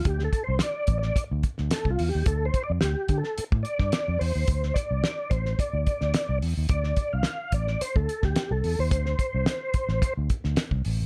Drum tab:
HH |x-x-x-x-x-x-x-o-|x-x-x-x-x-x-x-o-|x-x-x-x-x-x-x-o-|x-x-x-x-x-x-x-o-|
SD |-o--o--o---oo---|----o--o---oo---|-o--o--o---oo---|-o--o--o---oo---|
BD |o-o---o-o-o--o--|o-o---o--o-o----|o-o---o-o-o-----|o-o---o--o-o----|

HH |x-x-x-x-x-x-x-o-|
SD |-o--o--o---oo---|
BD |o-o---o-o-o--o--|